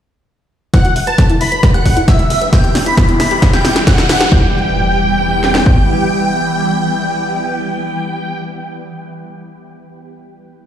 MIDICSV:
0, 0, Header, 1, 9, 480
1, 0, Start_track
1, 0, Key_signature, 1, "minor"
1, 0, Tempo, 447761
1, 789, Time_signature, 4, 2, 24, 8
1, 11432, End_track
2, 0, Start_track
2, 0, Title_t, "Digital synth lead"
2, 0, Program_c, 0, 84
2, 789, Note_on_c, 0, 90, 102
2, 1049, Note_off_c, 0, 90, 0
2, 1149, Note_on_c, 0, 93, 97
2, 1409, Note_off_c, 0, 93, 0
2, 1509, Note_on_c, 0, 95, 90
2, 1769, Note_off_c, 0, 95, 0
2, 1869, Note_on_c, 0, 90, 88
2, 2129, Note_off_c, 0, 90, 0
2, 2229, Note_on_c, 0, 88, 90
2, 2402, Note_off_c, 0, 88, 0
2, 2469, Note_on_c, 0, 88, 95
2, 2642, Note_off_c, 0, 88, 0
2, 2709, Note_on_c, 0, 91, 105
2, 2968, Note_off_c, 0, 91, 0
2, 3069, Note_on_c, 0, 95, 94
2, 3329, Note_off_c, 0, 95, 0
2, 3429, Note_on_c, 0, 95, 93
2, 3689, Note_off_c, 0, 95, 0
2, 3789, Note_on_c, 0, 91, 88
2, 4049, Note_off_c, 0, 91, 0
2, 4149, Note_on_c, 0, 90, 97
2, 4322, Note_off_c, 0, 90, 0
2, 4390, Note_on_c, 0, 90, 96
2, 4562, Note_off_c, 0, 90, 0
2, 4630, Note_on_c, 0, 91, 112
2, 8982, Note_off_c, 0, 91, 0
2, 11432, End_track
3, 0, Start_track
3, 0, Title_t, "Supersaw synth"
3, 0, Program_c, 1, 81
3, 788, Note_on_c, 1, 78, 96
3, 1048, Note_off_c, 1, 78, 0
3, 1148, Note_on_c, 1, 81, 97
3, 1408, Note_off_c, 1, 81, 0
3, 1508, Note_on_c, 1, 83, 96
3, 1768, Note_off_c, 1, 83, 0
3, 1869, Note_on_c, 1, 78, 92
3, 2128, Note_off_c, 1, 78, 0
3, 2229, Note_on_c, 1, 76, 84
3, 2402, Note_off_c, 1, 76, 0
3, 2469, Note_on_c, 1, 76, 88
3, 2642, Note_off_c, 1, 76, 0
3, 2709, Note_on_c, 1, 79, 101
3, 2968, Note_off_c, 1, 79, 0
3, 3070, Note_on_c, 1, 83, 96
3, 3329, Note_off_c, 1, 83, 0
3, 3429, Note_on_c, 1, 83, 96
3, 3689, Note_off_c, 1, 83, 0
3, 3789, Note_on_c, 1, 79, 95
3, 4049, Note_off_c, 1, 79, 0
3, 4148, Note_on_c, 1, 78, 92
3, 4322, Note_off_c, 1, 78, 0
3, 4389, Note_on_c, 1, 78, 92
3, 4562, Note_off_c, 1, 78, 0
3, 4630, Note_on_c, 1, 79, 107
3, 8982, Note_off_c, 1, 79, 0
3, 11432, End_track
4, 0, Start_track
4, 0, Title_t, "Synth arpeggio sound"
4, 0, Program_c, 2, 84
4, 789, Note_on_c, 2, 64, 101
4, 836, Note_off_c, 2, 64, 0
4, 909, Note_on_c, 2, 66, 104
4, 980, Note_off_c, 2, 66, 0
4, 1029, Note_on_c, 2, 76, 77
4, 1100, Note_off_c, 2, 76, 0
4, 1150, Note_on_c, 2, 71, 101
4, 1196, Note_off_c, 2, 71, 0
4, 1270, Note_on_c, 2, 69, 86
4, 1340, Note_off_c, 2, 69, 0
4, 1389, Note_on_c, 2, 64, 100
4, 1436, Note_off_c, 2, 64, 0
4, 1510, Note_on_c, 2, 76, 76
4, 1557, Note_off_c, 2, 76, 0
4, 1630, Note_on_c, 2, 71, 97
4, 1700, Note_off_c, 2, 71, 0
4, 1750, Note_on_c, 2, 59, 104
4, 1797, Note_off_c, 2, 59, 0
4, 1869, Note_on_c, 2, 67, 101
4, 1940, Note_off_c, 2, 67, 0
4, 1990, Note_on_c, 2, 62, 71
4, 2018, Note_off_c, 2, 62, 0
4, 2110, Note_on_c, 2, 64, 73
4, 2157, Note_off_c, 2, 64, 0
4, 2230, Note_on_c, 2, 69, 87
4, 2300, Note_off_c, 2, 69, 0
4, 2349, Note_on_c, 2, 64, 106
4, 2396, Note_off_c, 2, 64, 0
4, 2469, Note_on_c, 2, 76, 73
4, 2516, Note_off_c, 2, 76, 0
4, 2590, Note_on_c, 2, 71, 100
4, 2660, Note_off_c, 2, 71, 0
4, 2710, Note_on_c, 2, 59, 101
4, 2757, Note_off_c, 2, 59, 0
4, 2829, Note_on_c, 2, 67, 102
4, 2900, Note_off_c, 2, 67, 0
4, 2950, Note_on_c, 2, 62, 80
4, 2978, Note_off_c, 2, 62, 0
4, 3069, Note_on_c, 2, 64, 77
4, 3116, Note_off_c, 2, 64, 0
4, 3189, Note_on_c, 2, 59, 106
4, 3260, Note_off_c, 2, 59, 0
4, 3309, Note_on_c, 2, 64, 109
4, 3356, Note_off_c, 2, 64, 0
4, 3429, Note_on_c, 2, 76, 80
4, 3476, Note_off_c, 2, 76, 0
4, 3549, Note_on_c, 2, 67, 100
4, 3577, Note_off_c, 2, 67, 0
4, 3669, Note_on_c, 2, 59, 102
4, 3716, Note_off_c, 2, 59, 0
4, 3789, Note_on_c, 2, 67, 100
4, 3860, Note_off_c, 2, 67, 0
4, 3909, Note_on_c, 2, 64, 73
4, 3937, Note_off_c, 2, 64, 0
4, 4029, Note_on_c, 2, 64, 75
4, 4076, Note_off_c, 2, 64, 0
4, 4149, Note_on_c, 2, 66, 110
4, 4177, Note_off_c, 2, 66, 0
4, 4269, Note_on_c, 2, 64, 99
4, 4297, Note_off_c, 2, 64, 0
4, 4390, Note_on_c, 2, 76, 77
4, 4436, Note_off_c, 2, 76, 0
4, 4509, Note_on_c, 2, 67, 103
4, 4538, Note_off_c, 2, 67, 0
4, 4629, Note_on_c, 2, 64, 88
4, 4853, Note_off_c, 2, 64, 0
4, 11432, End_track
5, 0, Start_track
5, 0, Title_t, "Ambient pad"
5, 0, Program_c, 3, 92
5, 1749, Note_on_c, 3, 52, 74
5, 1750, Note_on_c, 3, 67, 88
5, 2708, Note_on_c, 3, 55, 76
5, 3650, Note_off_c, 3, 67, 0
5, 4600, Note_off_c, 3, 52, 0
5, 4610, Note_off_c, 3, 55, 0
5, 4628, Note_on_c, 3, 55, 76
5, 4629, Note_on_c, 3, 52, 82
5, 4629, Note_on_c, 3, 59, 79
5, 4629, Note_on_c, 3, 67, 94
5, 8981, Note_off_c, 3, 52, 0
5, 8981, Note_off_c, 3, 55, 0
5, 8981, Note_off_c, 3, 59, 0
5, 8981, Note_off_c, 3, 67, 0
5, 11432, End_track
6, 0, Start_track
6, 0, Title_t, "Analog synth bass"
6, 0, Program_c, 4, 38
6, 909, Note_on_c, 4, 28, 89
6, 991, Note_off_c, 4, 28, 0
6, 1029, Note_on_c, 4, 28, 95
6, 1111, Note_off_c, 4, 28, 0
6, 1149, Note_on_c, 4, 28, 85
6, 1231, Note_off_c, 4, 28, 0
6, 1389, Note_on_c, 4, 28, 85
6, 1471, Note_off_c, 4, 28, 0
6, 1509, Note_on_c, 4, 28, 100
6, 1591, Note_off_c, 4, 28, 0
6, 1630, Note_on_c, 4, 28, 92
6, 1711, Note_off_c, 4, 28, 0
6, 1870, Note_on_c, 4, 28, 86
6, 1951, Note_off_c, 4, 28, 0
6, 1989, Note_on_c, 4, 28, 97
6, 2071, Note_off_c, 4, 28, 0
6, 2109, Note_on_c, 4, 28, 85
6, 2191, Note_off_c, 4, 28, 0
6, 2349, Note_on_c, 4, 28, 89
6, 2431, Note_off_c, 4, 28, 0
6, 2469, Note_on_c, 4, 28, 95
6, 2551, Note_off_c, 4, 28, 0
6, 2589, Note_on_c, 4, 28, 88
6, 2671, Note_off_c, 4, 28, 0
6, 2829, Note_on_c, 4, 28, 84
6, 2911, Note_off_c, 4, 28, 0
6, 2950, Note_on_c, 4, 28, 99
6, 3031, Note_off_c, 4, 28, 0
6, 3069, Note_on_c, 4, 28, 93
6, 3151, Note_off_c, 4, 28, 0
6, 3310, Note_on_c, 4, 28, 87
6, 3391, Note_off_c, 4, 28, 0
6, 3429, Note_on_c, 4, 28, 96
6, 3511, Note_off_c, 4, 28, 0
6, 3549, Note_on_c, 4, 28, 89
6, 3631, Note_off_c, 4, 28, 0
6, 3790, Note_on_c, 4, 28, 85
6, 3871, Note_off_c, 4, 28, 0
6, 3909, Note_on_c, 4, 28, 96
6, 3991, Note_off_c, 4, 28, 0
6, 4029, Note_on_c, 4, 28, 90
6, 4111, Note_off_c, 4, 28, 0
6, 4269, Note_on_c, 4, 28, 88
6, 4351, Note_off_c, 4, 28, 0
6, 4389, Note_on_c, 4, 28, 97
6, 4471, Note_off_c, 4, 28, 0
6, 4509, Note_on_c, 4, 28, 89
6, 4591, Note_off_c, 4, 28, 0
6, 4629, Note_on_c, 4, 28, 96
6, 6026, Note_off_c, 4, 28, 0
6, 11432, End_track
7, 0, Start_track
7, 0, Title_t, "Impact"
7, 0, Program_c, 5, 103
7, 4629, Note_on_c, 5, 60, 67
7, 9025, Note_off_c, 5, 60, 0
7, 11432, End_track
8, 0, Start_track
8, 0, Title_t, "Riser"
8, 0, Program_c, 6, 103
8, 789, Note_on_c, 6, 60, 73
8, 4629, Note_off_c, 6, 60, 0
8, 11432, End_track
9, 0, Start_track
9, 0, Title_t, "Drums"
9, 789, Note_on_c, 9, 36, 115
9, 789, Note_on_c, 9, 38, 46
9, 789, Note_on_c, 9, 42, 81
9, 896, Note_off_c, 9, 36, 0
9, 896, Note_off_c, 9, 38, 0
9, 896, Note_off_c, 9, 42, 0
9, 909, Note_on_c, 9, 42, 52
9, 1016, Note_off_c, 9, 42, 0
9, 1029, Note_on_c, 9, 46, 102
9, 1136, Note_off_c, 9, 46, 0
9, 1149, Note_on_c, 9, 42, 54
9, 1256, Note_off_c, 9, 42, 0
9, 1269, Note_on_c, 9, 36, 113
9, 1269, Note_on_c, 9, 38, 52
9, 1269, Note_on_c, 9, 42, 80
9, 1376, Note_off_c, 9, 36, 0
9, 1376, Note_off_c, 9, 38, 0
9, 1376, Note_off_c, 9, 42, 0
9, 1389, Note_on_c, 9, 42, 53
9, 1496, Note_off_c, 9, 42, 0
9, 1509, Note_on_c, 9, 46, 84
9, 1616, Note_off_c, 9, 46, 0
9, 1629, Note_on_c, 9, 42, 52
9, 1736, Note_off_c, 9, 42, 0
9, 1749, Note_on_c, 9, 36, 112
9, 1749, Note_on_c, 9, 37, 75
9, 1749, Note_on_c, 9, 38, 57
9, 1749, Note_on_c, 9, 42, 81
9, 1856, Note_off_c, 9, 36, 0
9, 1856, Note_off_c, 9, 37, 0
9, 1856, Note_off_c, 9, 38, 0
9, 1856, Note_off_c, 9, 42, 0
9, 1869, Note_on_c, 9, 42, 55
9, 1976, Note_off_c, 9, 42, 0
9, 1989, Note_on_c, 9, 36, 58
9, 1989, Note_on_c, 9, 46, 99
9, 2096, Note_off_c, 9, 36, 0
9, 2096, Note_off_c, 9, 46, 0
9, 2109, Note_on_c, 9, 42, 56
9, 2216, Note_off_c, 9, 42, 0
9, 2229, Note_on_c, 9, 36, 117
9, 2229, Note_on_c, 9, 38, 66
9, 2229, Note_on_c, 9, 42, 79
9, 2336, Note_off_c, 9, 36, 0
9, 2336, Note_off_c, 9, 38, 0
9, 2336, Note_off_c, 9, 42, 0
9, 2349, Note_on_c, 9, 42, 53
9, 2456, Note_off_c, 9, 42, 0
9, 2469, Note_on_c, 9, 46, 93
9, 2576, Note_off_c, 9, 46, 0
9, 2589, Note_on_c, 9, 42, 54
9, 2697, Note_off_c, 9, 42, 0
9, 2709, Note_on_c, 9, 36, 119
9, 2709, Note_on_c, 9, 38, 73
9, 2709, Note_on_c, 9, 42, 78
9, 2816, Note_off_c, 9, 36, 0
9, 2816, Note_off_c, 9, 38, 0
9, 2816, Note_off_c, 9, 42, 0
9, 2829, Note_on_c, 9, 42, 54
9, 2936, Note_off_c, 9, 42, 0
9, 2949, Note_on_c, 9, 38, 79
9, 2949, Note_on_c, 9, 46, 110
9, 3056, Note_off_c, 9, 38, 0
9, 3056, Note_off_c, 9, 46, 0
9, 3069, Note_on_c, 9, 42, 54
9, 3176, Note_off_c, 9, 42, 0
9, 3189, Note_on_c, 9, 36, 122
9, 3189, Note_on_c, 9, 38, 84
9, 3189, Note_on_c, 9, 42, 80
9, 3296, Note_off_c, 9, 36, 0
9, 3296, Note_off_c, 9, 38, 0
9, 3296, Note_off_c, 9, 42, 0
9, 3309, Note_on_c, 9, 42, 54
9, 3416, Note_off_c, 9, 42, 0
9, 3429, Note_on_c, 9, 38, 80
9, 3429, Note_on_c, 9, 46, 90
9, 3536, Note_off_c, 9, 38, 0
9, 3536, Note_off_c, 9, 46, 0
9, 3549, Note_on_c, 9, 42, 53
9, 3656, Note_off_c, 9, 42, 0
9, 3669, Note_on_c, 9, 36, 127
9, 3669, Note_on_c, 9, 38, 92
9, 3669, Note_on_c, 9, 42, 83
9, 3776, Note_off_c, 9, 36, 0
9, 3776, Note_off_c, 9, 38, 0
9, 3776, Note_off_c, 9, 42, 0
9, 3789, Note_on_c, 9, 38, 81
9, 3789, Note_on_c, 9, 42, 53
9, 3896, Note_off_c, 9, 38, 0
9, 3896, Note_off_c, 9, 42, 0
9, 3909, Note_on_c, 9, 38, 92
9, 3909, Note_on_c, 9, 46, 108
9, 4016, Note_off_c, 9, 38, 0
9, 4016, Note_off_c, 9, 46, 0
9, 4029, Note_on_c, 9, 38, 92
9, 4029, Note_on_c, 9, 42, 55
9, 4136, Note_off_c, 9, 38, 0
9, 4136, Note_off_c, 9, 42, 0
9, 4149, Note_on_c, 9, 36, 123
9, 4149, Note_on_c, 9, 38, 98
9, 4149, Note_on_c, 9, 42, 82
9, 4256, Note_off_c, 9, 36, 0
9, 4256, Note_off_c, 9, 38, 0
9, 4256, Note_off_c, 9, 42, 0
9, 4269, Note_on_c, 9, 38, 91
9, 4269, Note_on_c, 9, 42, 53
9, 4376, Note_off_c, 9, 38, 0
9, 4376, Note_off_c, 9, 42, 0
9, 4388, Note_on_c, 9, 38, 106
9, 4388, Note_on_c, 9, 46, 94
9, 4496, Note_off_c, 9, 38, 0
9, 4496, Note_off_c, 9, 46, 0
9, 4508, Note_on_c, 9, 38, 98
9, 4508, Note_on_c, 9, 42, 53
9, 4616, Note_off_c, 9, 38, 0
9, 4616, Note_off_c, 9, 42, 0
9, 4629, Note_on_c, 9, 36, 119
9, 4736, Note_off_c, 9, 36, 0
9, 5829, Note_on_c, 9, 38, 60
9, 5936, Note_off_c, 9, 38, 0
9, 5949, Note_on_c, 9, 38, 82
9, 6056, Note_off_c, 9, 38, 0
9, 6069, Note_on_c, 9, 36, 94
9, 6176, Note_off_c, 9, 36, 0
9, 11432, End_track
0, 0, End_of_file